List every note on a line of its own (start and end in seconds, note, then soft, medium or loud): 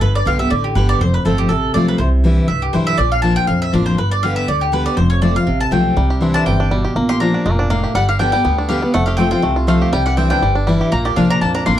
0.01 0.20 G1 loud
0.01 0.49 G2 loud
0.01 0.14 B4 medium
0.15 0.26 D5 loud
0.26 0.47 B1 medium
0.26 0.39 D3 medium
0.26 0.39 G3 medium
0.26 0.39 B3 medium
0.26 0.38 G4 medium
0.26 0.39 F5 medium
0.39 0.51 B3 medium
0.39 0.50 G4 medium
0.39 0.51 E5 loud
0.50 0.72 A1 medium
0.50 0.74 D3 loud
0.50 0.64 D5 medium
0.64 0.75 G4 medium
0.75 0.97 G1 medium
0.75 0.99 D3 medium
0.75 1.00 G3 medium
0.75 1.00 B3 medium
0.75 1.00 G4 loud
0.75 0.89 B4 medium
0.89 1.00 D5 loud
1.00 1.20 F1 loud
1.00 1.48 F2 medium
1.00 1.14 C5 medium
1.14 1.25 B4 medium
1.25 1.47 G1 medium
1.25 1.49 F3 medium
1.25 1.49 A3 medium
1.25 1.50 C4 medium
1.25 1.50 F4 medium
1.25 1.38 A4 medium
1.38 1.50 G4 medium
1.49 1.71 A1 medium
1.49 1.98 C3 medium
1.49 1.73 A4 medium
1.74 1.96 B1 medium
1.74 1.98 F3 medium
1.74 1.99 A3 medium
1.74 1.99 C4 medium
1.74 1.99 F4 medium
1.74 1.88 D5 medium
1.88 1.98 B4 medium
1.98 2.38 C2 loud
1.98 2.47 C3 medium
1.98 2.07 C5 medium
2.24 2.48 E3 medium
2.24 2.48 G3 medium
2.24 2.49 D4 medium
2.24 2.49 E4 loud
2.48 2.70 C2 medium
2.48 2.97 G2 medium
2.48 2.62 E5 medium
2.62 2.74 G4 medium
2.73 2.95 B1 medium
2.73 2.97 E3 medium
2.73 2.98 G3 medium
2.73 2.98 D4 medium
2.73 2.98 E4 medium
2.73 2.87 C5 medium
2.87 2.98 E5 loud
2.98 3.37 A#1 medium
2.98 3.46 A#2 loud
2.98 3.11 D5 loud
3.12 3.22 F5 medium
3.22 3.47 F3 medium
3.22 3.47 A#3 medium
3.22 3.48 D4 medium
3.22 3.48 F4 medium
3.22 3.36 A5 loud
3.36 3.47 G5 loud
3.47 3.70 A#1 medium
3.47 3.96 F2 medium
3.47 3.61 F5 medium
3.62 3.73 E5 loud
3.73 3.95 A1 medium
3.73 3.97 F3 medium
3.73 3.97 A#3 medium
3.73 3.97 D4 medium
3.73 3.98 F4 medium
3.73 3.85 D5 medium
3.86 3.97 C5 loud
3.98 4.36 G1 medium
3.98 4.46 G2 medium
3.98 4.11 B4 medium
4.11 4.23 D5 loud
4.23 4.47 D3 medium
4.23 4.47 G3 medium
4.23 4.47 B3 medium
4.23 4.48 G4 medium
4.23 4.36 F5 loud
4.36 4.47 E5 loud
4.48 4.86 D2 medium
4.48 4.71 D3 medium
4.48 4.61 D5 medium
4.61 4.72 G4 medium
4.72 4.96 D3 medium
4.72 4.96 G3 medium
4.72 4.97 B3 loud
4.72 4.97 G4 loud
4.72 4.85 B4 medium
4.86 4.97 D5 loud
4.97 5.36 F1 loud
4.97 5.45 F2 loud
4.97 5.09 C5 medium
5.10 5.21 C#5 loud
5.21 5.35 F3 medium
5.21 5.35 A3 medium
5.21 5.35 C4 medium
5.21 5.34 F4 medium
5.21 5.35 D5 medium
5.35 5.47 C4 soft
5.35 5.46 F4 medium
5.35 5.59 F5 loud
5.47 5.68 A1 medium
5.47 5.94 C3 medium
5.60 5.71 A5 loud
5.71 5.93 B1 medium
5.71 5.95 F3 medium
5.71 5.96 A3 loud
5.71 5.96 C4 medium
5.71 5.96 F4 medium
5.71 6.07 G5 medium
5.96 6.35 C2 loud
5.96 6.44 C3 medium
5.96 6.32 G3 medium
6.10 6.44 G4 medium
6.21 6.45 E3 medium
6.21 6.45 G3 medium
6.21 6.57 C4 medium
6.21 6.45 D4 medium
6.21 6.46 E4 medium
6.34 6.60 D4 medium
6.34 6.46 A5 loud
6.46 6.84 G1 medium
6.46 6.70 C3 medium
6.46 6.70 G3 medium
6.46 6.82 G5 medium
6.60 6.94 D4 medium
6.71 6.95 B2 medium
6.71 6.96 G3 medium
6.84 6.96 G4 medium
6.96 7.34 A#1 loud
6.96 7.44 A#2 medium
6.96 7.32 A#3 medium
7.09 7.43 G4 medium
7.09 7.20 C6 loud
7.20 7.44 F3 medium
7.20 7.45 A#3 medium
7.20 7.33 D4 medium
7.20 7.45 D4 medium
7.20 7.45 F4 medium
7.20 7.56 A#5 medium
7.34 7.58 D4 medium
7.46 7.84 F1 medium
7.46 7.69 A#2 loud
7.46 7.51 G#3 medium
7.51 7.69 A#3 medium
7.59 7.93 D4 medium
7.70 7.94 A2 medium
7.70 7.95 A#3 medium
7.70 7.93 F5 medium
7.84 7.95 G4 medium
7.95 8.33 G1 loud
7.95 8.43 G2 medium
7.95 8.31 G3 medium
7.95 8.08 F#5 loud
8.09 8.43 G4 medium
8.09 8.19 F5 medium
8.19 8.33 D3 medium
8.19 8.33 G3 medium
8.19 8.33 B3 medium
8.19 8.55 D4 medium
8.19 8.31 G4 medium
8.19 8.31 G5 medium
8.32 8.67 G3 medium
8.32 8.45 B3 medium
8.32 8.44 G4 medium
8.32 8.56 G5 loud
8.45 8.83 D2 medium
8.45 8.67 D3 loud
8.45 8.80 B3 medium
8.58 8.92 D4 medium
8.69 8.82 D3 medium
8.69 8.82 G3 loud
8.69 8.83 B3 loud
8.69 8.94 G4 medium
8.69 8.81 G4 loud
8.69 8.92 F5 medium
8.82 8.94 B3 medium
8.82 8.94 G4 medium
8.94 9.33 F1 medium
8.94 9.41 F2 medium
8.94 9.30 A3 medium
8.94 9.05 F#5 loud
9.06 9.41 G4 medium
9.06 9.16 F5 medium
9.17 9.31 F3 medium
9.17 9.32 A3 loud
9.17 9.54 C4 medium
9.17 9.32 C4 medium
9.17 9.30 F4 medium
9.17 9.30 G5 loud
9.31 9.44 C4 medium
9.31 9.43 F4 medium
9.31 9.55 F4 medium
9.31 9.55 G5 loud
9.42 9.82 C2 medium
9.42 9.90 C3 loud
9.42 9.67 A3 medium
9.56 9.91 F4 medium
9.67 9.92 F3 medium
9.67 9.92 A3 medium
9.67 9.93 A3 medium
9.67 9.92 C4 medium
9.67 9.92 F4 medium
9.67 9.92 F5 medium
9.82 9.93 G4 medium
9.93 10.31 C2 medium
9.93 10.40 C3 loud
9.93 10.29 G3 medium
9.93 10.05 G5 loud
10.06 10.40 G4 medium
10.06 10.17 F#5 medium
10.17 10.30 E3 medium
10.17 10.31 G3 medium
10.17 10.53 C4 medium
10.17 10.31 D4 medium
10.17 10.29 E4 medium
10.17 10.29 G5 medium
10.30 10.55 D4 medium
10.30 10.43 D4 medium
10.30 10.42 E4 medium
10.30 10.54 G5 loud
10.42 10.80 G1 medium
10.42 10.90 G2 medium
10.42 10.66 G3 medium
10.55 10.90 D4 medium
10.67 10.91 E3 medium
10.67 10.92 G3 medium
10.67 10.91 G3 medium
10.67 10.92 D4 medium
10.67 10.92 E4 loud
10.81 10.92 G4 medium
10.92 11.12 A#1 loud
10.92 11.40 A#2 medium
10.92 11.28 A#3 medium
10.92 11.05 A#5 loud
11.05 11.39 G4 medium
11.05 11.16 D5 medium
11.16 11.38 C2 loud
11.16 11.41 F3 medium
11.16 11.41 A#3 medium
11.16 11.29 D4 medium
11.16 11.41 D4 medium
11.16 11.41 F4 loud
11.16 11.30 F5 medium
11.30 11.54 D4 medium
11.30 11.41 A#5 loud
11.41 11.63 A#1 medium
11.41 11.79 F2 medium
11.41 11.65 A#3 medium
11.41 11.54 A5 medium
11.55 11.79 D4 medium
11.55 11.66 A#5 loud
11.66 11.79 A1 loud
11.66 11.79 F3 medium
11.66 11.79 A#3 medium
11.66 11.79 D4 medium
11.66 11.79 F4 loud
11.66 11.77 C6 medium